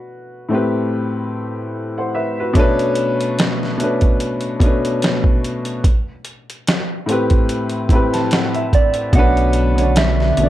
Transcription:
0.00 2.41 F#4 medium
0.00 0.55 B4 medium
0.49 1.04 A2 medium
0.49 1.05 A3 medium
0.49 1.06 C4 medium
0.53 1.07 G4 medium
0.53 1.07 B4 medium
1.98 2.15 C5 medium
1.98 2.14 F#5 medium
2.15 2.36 B4 medium
2.15 2.36 E5 medium
2.40 2.78 F#4 soft
2.40 2.58 B4 medium
2.53 3.35 B2 loud
2.53 3.36 A3 loud
2.53 3.36 C#4 loud
2.53 kick medium
2.53 closed hi-hat medium
2.58 3.37 D4 medium
2.58 3.38 B4 loud
2.79 closed hi-hat soft
2.95 closed hi-hat soft
3.21 closed hi-hat soft
3.39 snare loud
3.39 closed hi-hat medium
3.63 snare soft
3.78 4.33 B2 medium
3.78 4.34 A3 medium
3.78 4.35 C#4 medium
3.78 closed hi-hat medium
3.82 4.35 D4 medium
3.82 4.36 B4 medium
4.01 kick medium
4.01 closed hi-hat soft
4.20 closed hi-hat medium
4.41 closed hi-hat soft
4.60 5.69 B2 medium
4.60 5.70 A3 medium
4.60 5.71 C#4 medium
4.60 kick medium
4.60 closed hi-hat medium
4.64 5.71 D4 medium
4.64 5.72 B4 medium
4.85 closed hi-hat medium
5.02 snare medium
5.02 closed hi-hat medium
5.24 kick medium
5.44 closed hi-hat medium
5.65 closed hi-hat soft
5.84 kick loud
5.84 closed hi-hat medium
6.25 closed hi-hat soft
6.50 closed hi-hat soft
6.67 snare loud
6.67 closed hi-hat medium
7.06 7.62 A2 medium
7.06 7.62 A3 medium
7.06 7.63 C4 medium
7.06 closed hi-hat medium
7.10 7.64 G4 medium
7.10 7.65 B4 medium
7.30 kick medium
7.30 closed hi-hat soft
7.49 closed hi-hat medium
7.70 closed hi-hat soft
7.89 8.70 A2 medium
7.89 8.71 A3 medium
7.89 8.71 C4 medium
7.89 8.12 B5 medium
7.89 kick medium
7.89 closed hi-hat medium
7.94 8.72 G4 medium
7.94 8.73 B4 medium
8.13 8.30 A5 medium
8.13 snare soft
8.13 closed hi-hat medium
8.31 8.53 F#5 medium
8.31 snare loud
8.31 closed hi-hat medium
8.54 8.71 E5 medium
8.54 closed hi-hat soft
8.73 9.12 D5 medium
8.73 9.17 D5 medium
8.73 kick medium
8.73 closed hi-hat medium
8.94 closed hi-hat soft
9.13 10.33 B1 loud
9.13 9.53 B2 loud
9.13 10.49 D3 medium
9.13 10.49 A3 medium
9.13 9.54 A3 medium
9.13 10.49 B3 medium
9.13 9.55 C#4 medium
9.13 9.99 F#5 loud
9.13 kick loud
9.13 closed hi-hat medium
9.18 9.56 D4 medium
9.18 9.56 B4 loud
9.37 closed hi-hat soft
9.53 closed hi-hat medium
9.75 10.16 B2 medium
9.75 10.17 A3 medium
9.75 10.18 C#5 medium
9.75 closed hi-hat soft
9.80 10.19 D4 medium
9.80 10.19 D5 medium
9.96 10.49 E5 loud
9.96 snare loud
9.96 closed hi-hat medium
10.20 snare soft
10.37 10.49 A1 medium
10.37 10.49 B2 medium
10.37 10.49 A3 medium
10.37 10.49 B3 medium
10.37 closed hi-hat medium
10.42 10.49 D4 medium
10.42 10.49 D5 medium

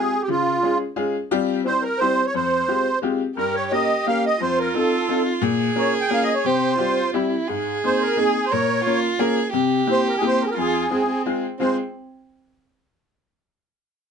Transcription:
0.00 0.12 G#3 medium
0.00 0.12 C4 soft
0.00 0.12 F4 medium
0.00 0.13 G4 medium
0.00 0.22 G#4 medium
0.22 0.29 G4 medium
0.28 0.54 C#3 medium
0.28 0.78 F4 medium
0.62 0.81 G#3 medium
0.62 0.81 C#4 medium
0.62 0.81 F4 soft
0.62 0.81 G#4 medium
0.96 1.15 G#3 medium
0.96 1.15 C#4 medium
0.96 1.14 F4 medium
0.96 1.14 G#4 medium
1.31 1.59 G3 loud
1.31 1.59 C4 medium
1.31 1.59 F4 loud
1.31 1.59 G4 loud
1.65 1.83 G3 medium
1.65 1.83 C4 medium
1.65 1.83 E4 medium
1.65 1.83 G4 medium
1.65 1.84 C5 loud
1.83 2.00 A#4 medium
1.98 2.18 G3 medium
1.98 2.18 C4 medium
1.98 2.18 E4 medium
1.98 2.18 G4 medium
1.98 2.26 C5 loud
2.26 2.35 C#5 medium
2.34 2.60 F2 medium
2.34 2.99 C5 medium
2.68 2.86 G#3 medium
2.68 2.86 C4 soft
2.68 2.86 F4 medium
2.68 2.86 G4 medium
3.02 3.20 G#3 medium
3.02 3.20 C4 medium
3.02 3.20 F4 medium
3.02 3.21 G4 medium
3.37 3.63 G2 medium
3.37 4.36 G4 medium
3.37 3.56 A#4 medium
3.55 3.72 C#5 medium
3.71 3.89 A#3 soft
3.71 3.89 C#4 medium
3.71 3.89 G4 medium
3.71 3.90 A#4 medium
3.71 4.07 D#5 medium
4.06 4.24 A#3 medium
4.06 4.24 C#4 medium
4.06 4.24 G4 medium
4.06 4.24 A#4 medium
4.06 4.25 F5 medium
4.26 4.42 D#5 medium
4.40 4.66 F2 medium
4.40 5.45 F4 medium
4.40 4.59 C5 medium
4.59 4.76 A#4 medium
4.75 4.92 C4 medium
4.75 4.92 D#4 medium
4.75 4.92 F4 soft
4.75 5.23 A4 medium
4.75 4.92 A4 medium
5.09 5.26 C4 medium
5.09 5.26 D#4 soft
5.09 5.26 F4 medium
5.09 5.27 A4 medium
5.41 5.68 A#2 loud
5.41 6.47 G#4 loud
5.76 5.94 A#3 medium
5.76 5.94 C#4 medium
5.76 5.94 F4 medium
5.76 5.94 A#4 medium
5.76 5.94 C#5 medium
6.00 6.10 G5 loud
6.10 6.28 A#3 medium
6.10 6.28 C#4 medium
6.10 6.28 F4 medium
6.10 6.28 A#4 medium
6.10 6.24 F5 loud
6.23 6.34 D#5 medium
6.34 6.46 C#5 medium
6.44 6.71 C3 medium
6.44 6.77 G4 medium
6.44 7.11 C5 medium
6.78 6.97 G3 medium
6.78 6.97 C4 soft
6.78 7.15 F4 medium
6.78 6.97 F4 soft
6.78 6.97 G4 medium
7.13 7.32 G3 medium
7.13 7.32 C4 medium
7.13 7.49 E4 medium
7.13 7.32 E4 medium
7.13 7.32 G4 medium
7.48 7.75 G#2 medium
7.48 8.53 G#4 loud
7.84 8.01 A#3 soft
7.84 8.01 C4 medium
7.84 8.01 D#4 medium
7.84 8.01 G#4 medium
7.84 8.03 C5 loud
8.01 8.18 A#4 medium
8.16 8.35 A#3 medium
8.16 8.35 C4 medium
8.16 8.35 D#4 medium
8.16 8.35 G#4 medium
8.16 8.45 G#4 medium
8.45 8.53 C5 medium
8.51 8.78 A#2 medium
8.51 8.84 A#4 medium
8.51 9.00 C#5 loud
8.85 9.04 A#3 medium
8.85 9.04 C#4 soft
8.85 9.21 F4 loud
8.85 9.04 F4 soft
8.85 9.04 A#4 medium
9.19 9.37 A#3 medium
9.19 9.37 C#4 medium
9.19 9.38 F4 medium
9.19 9.52 G#4 loud
9.19 9.37 A#4 medium
9.53 9.79 C3 loud
9.53 10.52 G4 medium
9.87 10.05 A#3 medium
9.87 10.05 C4 medium
9.87 10.06 E4 medium
9.87 10.05 G4 medium
9.91 10.08 C5 loud
10.09 10.16 A#4 medium
10.17 10.24 G#4 medium
10.21 10.40 A#3 medium
10.21 10.40 C4 medium
10.21 10.40 E4 medium
10.21 10.40 G4 medium
10.27 10.43 C5 loud
10.42 10.45 A#4 loud
10.46 10.49 G#4 medium
10.50 10.58 A#4 medium
10.57 10.83 F2 medium
10.57 10.89 F4 loud
10.57 11.22 G#4 medium
10.91 11.09 G#3 medium
10.91 11.09 C4 soft
10.91 11.08 C4 medium
10.91 11.09 F4 soft
10.91 11.09 G#4 medium
11.08 11.41 C4 medium
11.26 11.44 G#3 medium
11.26 11.44 C4 medium
11.26 11.44 F4 medium
11.26 11.44 G#4 medium
11.59 11.77 G#3 medium
11.59 11.76 C4 medium
11.59 11.77 C4 medium
11.59 11.77 F4 medium
11.59 11.77 G#4 medium
11.59 11.77 C5 medium

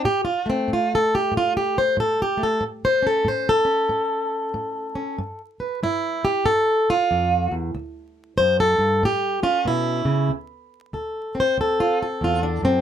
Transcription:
0.05 0.64 A2 medium
0.05 0.24 G4 medium
0.25 0.47 F4 medium
0.46 2.36 A3 soft
0.46 0.70 C4 medium
0.68 1.28 A2 medium
0.73 0.93 F4 medium
0.95 1.14 A4 medium
1.15 1.35 G4 medium
1.32 1.92 A2 medium
1.37 1.56 F4 loud
1.57 1.77 G4 medium
1.78 1.99 C5 medium
1.97 2.57 A2 medium
1.97 2.20 A4 medium
2.22 2.42 G4 medium
2.37 2.59 A3 soft
2.43 2.63 A4 medium
2.61 3.21 A2 medium
2.85 3.05 C5 loud
3.02 3.64 C#4 soft
3.07 3.27 A4 medium
3.25 3.85 A2 medium
3.25 3.49 C5 medium
3.49 5.41 A4 loud
3.65 4.94 C#4 soft
3.89 4.49 A2 medium
4.54 5.14 A2 medium
4.95 5.16 C#4 medium
5.18 5.78 G2 medium
5.60 5.83 B4 soft
5.83 6.42 G2 medium
5.83 6.26 E4 loud
6.25 6.46 G4 loud
6.45 7.05 G2 medium
6.45 6.89 A4 loud
6.90 7.54 F4 loud
7.11 7.51 F2 medium
7.51 7.74 E2 medium
7.75 8.34 D2 medium
8.38 8.78 F#2 medium
8.38 8.59 C5 loud
8.60 9.03 A4 loud
8.79 9.02 G2 medium
9.03 9.62 A2 medium
9.03 9.43 G4 medium
9.43 10.28 C#4 soft
9.43 9.66 F4 loud
9.65 10.05 B2 medium
9.65 10.31 E4 loud
10.05 10.30 C#3 medium
10.29 10.89 D2 medium
10.93 11.53 D2 medium
10.93 11.37 A4 soft
11.35 12.43 C4 soft
11.40 11.60 C5 medium
11.58 12.17 D2 medium
11.58 12.01 A4 medium
11.80 12.01 F4 medium
12.02 12.81 A4 medium
12.21 12.62 E2 medium
12.21 12.45 F4 medium
12.43 12.64 D4 medium
12.62 12.81 F#2 medium
12.62 12.81 C4 medium

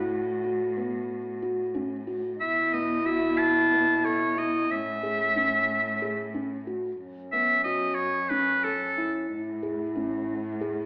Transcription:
0.00 2.42 A2 medium
0.00 0.19 E4 medium
0.00 2.09 F#4 loud
0.44 0.64 F#4 medium
0.77 1.17 B3 medium
1.42 1.63 F#4 medium
1.74 1.95 C#4 medium
2.07 2.28 F#4 medium
2.35 2.43 D#4 medium
2.40 4.71 B2 medium
2.40 4.70 E4 medium
2.40 2.75 E5 medium
2.73 2.94 B3 medium
2.73 3.07 D#5 medium
3.05 3.47 F#4 medium
3.05 3.39 E5 medium
3.38 4.07 A5 medium
3.72 3.93 B3 medium
4.04 4.25 A4 medium
4.04 4.40 C#5 medium
4.37 4.78 E4 medium
4.37 4.73 D#5 medium
4.69 6.96 A2 medium
4.69 6.63 C#4 medium
4.69 6.35 E5 medium
5.03 5.24 G#4 medium
5.36 5.77 C#4 medium
6.02 6.22 G#4 medium
6.34 6.55 C#4 medium
6.67 6.87 F#4 medium
7.00 9.30 F#2 medium
7.00 9.26 C#4 medium
7.32 7.53 B3 medium
7.32 7.63 E5 medium
7.64 8.06 F#4 medium
7.64 7.96 D#5 medium
7.95 8.31 C#5 medium
8.29 8.51 C#4 medium
8.29 8.65 B4 medium
8.64 9.13 A4 medium
8.64 8.84 A4 medium
8.97 9.38 E4 medium
9.29 10.86 A2 medium
9.29 10.86 E4 medium
9.63 9.83 G#4 medium
9.95 10.36 C#4 medium
10.61 10.81 G#4 medium

